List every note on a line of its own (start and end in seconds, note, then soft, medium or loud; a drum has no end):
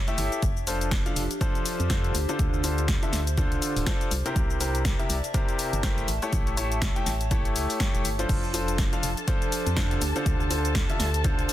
0.00 0.43 C#5 medium
0.00 1.12 E5 medium
0.00 1.12 A5 medium
0.08 0.16 A3 medium
0.08 0.16 E4 medium
0.08 0.16 G4 medium
0.08 0.16 A4 medium
0.08 0.16 E5 loud
0.08 closed hi-hat soft
0.08 cabasa soft
0.18 0.30 G1 loud
0.18 0.41 E4 medium
0.18 0.41 G4 medium
0.18 0.41 A4 medium
0.18 0.41 E5 medium
0.18 open hi-hat loud
0.18 cabasa medium
0.32 closed hi-hat soft
0.32 cabasa soft
0.42 1.02 F1 loud
0.42 4.91 D4 medium
0.42 kick loud
0.42 closed hi-hat medium
0.42 cabasa soft
0.57 4.91 G4 medium
0.57 cabasa soft
0.67 1.03 F3 medium
0.67 1.03 D4 medium
0.67 1.03 F4 medium
0.67 1.03 A4 medium
0.67 1.03 C5 medium
0.67 open hi-hat loud
0.67 cabasa medium
0.81 closed hi-hat medium
0.81 cabasa soft
0.91 kick loud
0.91 snare loud
0.91 closed hi-hat medium
0.91 cabasa soft
1.05 1.21 F3 medium
1.05 1.21 D4 medium
1.05 1.21 F4 medium
1.05 1.21 A4 medium
1.05 4.91 C5 medium
1.05 1.21 F5 medium
1.05 closed hi-hat soft
1.05 cabasa soft
1.16 1.28 F1 loud
1.16 open hi-hat loud
1.16 cabasa medium
1.31 closed hi-hat medium
1.31 cabasa soft
1.41 1.88 F3 loud
1.41 1.88 D4 medium
1.41 1.88 F4 medium
1.41 1.88 A4 medium
1.41 1.88 C5 loud
1.41 kick loud
1.41 closed hi-hat medium
1.41 cabasa soft
1.55 closed hi-hat soft
1.55 cabasa soft
1.66 open hi-hat loud
1.66 cabasa medium
1.80 2.12 F2 medium
1.80 closed hi-hat medium
1.80 cabasa soft
1.90 2.13 D3 loud
1.90 2.13 D4 medium
1.90 2.13 F4 medium
1.90 2.13 A4 medium
1.90 2.13 C5 loud
1.90 kick loud
1.90 snare loud
1.90 closed hi-hat medium
1.90 cabasa soft
2.04 closed hi-hat soft
2.04 cabasa soft
2.15 2.26 D2 medium
2.15 open hi-hat loud
2.15 cabasa medium
2.29 2.61 D3 medium
2.29 2.61 D4 medium
2.29 2.61 F4 medium
2.29 2.61 A4 medium
2.29 2.61 C5 loud
2.29 closed hi-hat medium
2.29 cabasa soft
2.39 2.99 D2 loud
2.39 kick loud
2.39 closed hi-hat medium
2.39 cabasa soft
2.54 cabasa soft
2.64 2.99 D3 medium
2.64 2.99 D4 medium
2.64 2.99 F4 medium
2.64 2.99 A4 medium
2.64 2.99 C5 medium
2.64 open hi-hat loud
2.64 cabasa medium
2.78 closed hi-hat medium
2.78 cabasa soft
2.88 kick loud
2.88 snare loud
2.88 closed hi-hat medium
2.88 cabasa soft
3.03 3.17 D3 medium
3.03 3.17 D4 medium
3.03 3.17 F4 medium
3.03 3.17 A4 medium
3.03 3.17 E5 medium
3.03 closed hi-hat soft
3.03 cabasa soft
3.13 3.53 D2 loud
3.13 snare medium
3.13 open hi-hat loud
3.13 cabasa medium
3.27 closed hi-hat medium
3.27 cabasa soft
3.38 3.84 D3 loud
3.38 3.84 D4 medium
3.38 3.84 F4 medium
3.38 3.84 A4 medium
3.38 3.84 C5 loud
3.38 kick loud
3.38 closed hi-hat medium
3.38 cabasa soft
3.52 3.60 C2 loud
3.52 closed hi-hat soft
3.52 cabasa soft
3.62 open hi-hat loud
3.62 cabasa medium
3.76 3.85 D1 loud
3.76 open hi-hat medium
3.76 cabasa soft
3.86 4.10 D4 loud
3.86 4.10 F4 medium
3.86 4.10 A4 medium
3.86 4.10 C5 loud
3.86 kick loud
3.86 snare loud
3.86 closed hi-hat medium
3.86 cabasa soft
4.01 closed hi-hat soft
4.01 cabasa soft
4.11 4.23 C2 loud
4.11 8.99 E5 medium
4.11 open hi-hat loud
4.11 cabasa medium
4.26 4.58 C3 medium
4.26 4.58 E4 medium
4.26 4.58 G4 medium
4.26 4.58 A#4 medium
4.26 4.58 C5 loud
4.26 closed hi-hat medium
4.26 cabasa soft
4.36 4.95 C2 loud
4.36 kick loud
4.36 closed hi-hat medium
4.36 cabasa soft
4.50 6.08 D5 medium
4.50 cabasa soft
4.61 4.96 C3 medium
4.61 4.96 E4 medium
4.61 4.96 G4 medium
4.61 4.96 A#4 medium
4.61 4.96 C5 medium
4.61 open hi-hat loud
4.61 cabasa medium
4.69 8.93 A5 medium
4.75 closed hi-hat medium
4.75 cabasa soft
4.85 kick loud
4.85 snare loud
4.85 closed hi-hat medium
4.85 cabasa soft
4.99 5.14 C3 medium
4.99 5.14 E4 medium
4.99 5.14 G4 medium
4.99 5.14 A#4 medium
4.99 5.14 E5 medium
4.99 closed hi-hat soft
4.99 cabasa soft
5.10 5.21 C2 loud
5.10 open hi-hat loud
5.10 cabasa medium
5.24 closed hi-hat medium
5.24 cabasa soft
5.34 5.81 C3 loud
5.34 5.81 E4 medium
5.34 5.81 G4 medium
5.34 5.81 A#4 medium
5.34 5.81 C5 loud
5.34 kick loud
5.34 closed hi-hat medium
5.34 cabasa soft
5.49 closed hi-hat soft
5.49 cabasa soft
5.59 open hi-hat loud
5.59 cabasa medium
5.73 6.05 G1 medium
5.73 closed hi-hat medium
5.73 cabasa soft
5.83 6.07 A3 loud
5.83 6.07 E4 medium
5.83 6.07 G4 medium
5.83 6.07 A#4 medium
5.83 6.07 C5 loud
5.83 kick loud
5.83 snare loud
5.83 closed hi-hat medium
5.83 cabasa soft
5.98 closed hi-hat soft
5.98 cabasa soft
6.08 6.20 A1 medium
6.08 open hi-hat loud
6.08 cabasa medium
6.22 6.55 A3 medium
6.22 6.55 E4 medium
6.22 6.55 G4 medium
6.22 6.55 A4 medium
6.22 6.55 C#5 loud
6.22 closed hi-hat medium
6.22 cabasa soft
6.33 6.92 A1 loud
6.33 8.29 C#5 medium
6.33 kick loud
6.33 closed hi-hat medium
6.33 cabasa soft
6.47 closed hi-hat soft
6.47 cabasa soft
6.57 6.93 A3 medium
6.57 6.93 E4 medium
6.57 6.93 G4 medium
6.57 6.93 A4 medium
6.57 6.93 C#5 medium
6.57 open hi-hat loud
6.57 cabasa medium
6.72 closed hi-hat medium
6.72 cabasa soft
6.82 kick loud
6.82 snare loud
6.82 closed hi-hat medium
6.82 cabasa soft
6.96 7.11 A3 medium
6.96 7.11 E4 medium
6.96 7.11 G4 medium
6.96 7.11 A4 medium
6.96 7.11 G5 medium
6.96 closed hi-hat soft
6.96 cabasa soft
7.06 7.47 A1 loud
7.06 snare medium
7.06 open hi-hat loud
7.06 cabasa medium
7.21 closed hi-hat medium
7.21 cabasa soft
7.31 7.78 A3 medium
7.31 7.78 E4 medium
7.31 7.78 G4 medium
7.31 7.78 A4 medium
7.31 7.78 C#5 loud
7.31 kick loud
7.31 closed hi-hat medium
7.31 cabasa soft
7.45 7.57 G1 loud
7.45 closed hi-hat soft
7.45 cabasa soft
7.56 7.67 C#2 medium
7.56 open hi-hat loud
7.56 cabasa medium
7.70 open hi-hat medium
7.70 cabasa soft
7.80 8.06 A3 loud
7.80 8.06 E4 medium
7.80 8.06 G4 medium
7.80 8.06 A4 medium
7.80 8.06 C#5 loud
7.80 kick loud
7.80 snare loud
7.80 closed hi-hat medium
7.80 cabasa soft
7.94 8.03 E1 loud
7.94 closed hi-hat soft
7.94 cabasa soft
8.05 8.26 G1 medium
8.05 open hi-hat loud
8.05 cabasa medium
8.19 8.52 F3 medium
8.19 8.52 D4 medium
8.19 8.52 F4 medium
8.19 8.52 A4 medium
8.19 8.52 C5 loud
8.19 closed hi-hat medium
8.19 cabasa soft
8.29 8.89 F1 loud
8.29 11.53 D4 medium
8.29 11.53 A4 medium
8.29 11.53 A5 medium
8.29 kick loud
8.29 closed hi-hat medium
8.29 crash medium
8.29 cabasa soft
8.44 cabasa soft
8.54 8.89 F3 medium
8.54 8.89 D4 medium
8.54 8.89 F4 medium
8.54 8.89 A4 medium
8.54 8.89 C5 medium
8.54 open hi-hat loud
8.54 cabasa medium
8.68 closed hi-hat medium
8.68 cabasa soft
8.76 11.53 G4 medium
8.76 kick loud
8.76 snare loud
8.76 closed hi-hat medium
8.76 cabasa soft
8.82 11.53 C5 medium
8.93 9.08 F3 medium
8.93 9.08 D4 medium
8.93 9.08 F4 medium
8.93 9.08 A4 medium
8.93 9.08 F5 medium
8.93 closed hi-hat soft
8.93 cabasa soft
9.03 9.15 F1 loud
9.03 open hi-hat loud
9.03 cabasa medium
9.17 closed hi-hat medium
9.17 cabasa soft
9.28 9.74 F3 medium
9.28 9.74 D4 medium
9.28 9.74 F4 medium
9.28 9.74 A4 medium
9.28 9.74 C5 loud
9.28 kick loud
9.28 closed hi-hat medium
9.28 cabasa soft
9.42 closed hi-hat soft
9.42 cabasa soft
9.52 open hi-hat loud
9.52 cabasa medium
9.67 9.99 F2 medium
9.67 closed hi-hat medium
9.67 cabasa soft
9.77 10.00 D3 loud
9.77 10.00 D4 medium
9.77 10.00 F4 medium
9.77 10.00 A4 loud
9.77 10.00 C5 loud
9.77 kick loud
9.77 snare loud
9.77 closed hi-hat medium
9.77 cabasa soft
9.91 closed hi-hat soft
9.91 cabasa soft
10.02 10.13 D2 medium
10.02 open hi-hat loud
10.02 cabasa medium
10.16 10.48 D3 medium
10.16 10.48 D4 medium
10.16 10.48 F4 medium
10.16 10.48 A4 medium
10.16 10.48 C5 loud
10.16 closed hi-hat medium
10.16 cabasa soft
10.26 10.85 D2 loud
10.26 kick loud
10.26 closed hi-hat medium
10.26 cabasa soft
10.40 cabasa soft
10.51 10.86 D3 medium
10.51 10.86 D4 medium
10.51 10.86 F4 medium
10.51 10.86 A4 medium
10.51 10.86 C5 medium
10.51 open hi-hat loud
10.51 cabasa medium
10.65 closed hi-hat medium
10.65 cabasa soft
10.75 kick loud
10.75 snare loud
10.75 closed hi-hat medium
10.75 cabasa soft
10.90 11.04 D3 medium
10.90 11.04 D4 medium
10.90 11.04 F4 medium
10.90 11.04 A4 medium
10.90 11.04 E5 medium
10.90 closed hi-hat soft
10.90 cabasa soft
11.00 11.40 D2 loud
11.00 snare medium
11.00 open hi-hat loud
11.00 cabasa medium
11.14 closed hi-hat medium
11.14 cabasa soft
11.24 11.53 D3 loud
11.24 11.53 D4 medium
11.24 11.53 F4 medium
11.24 11.53 A4 medium
11.24 11.53 C5 loud
11.24 kick loud
11.24 closed hi-hat medium
11.24 cabasa soft
11.39 11.47 C2 loud
11.39 closed hi-hat soft
11.39 cabasa soft
11.49 open hi-hat loud
11.49 cabasa medium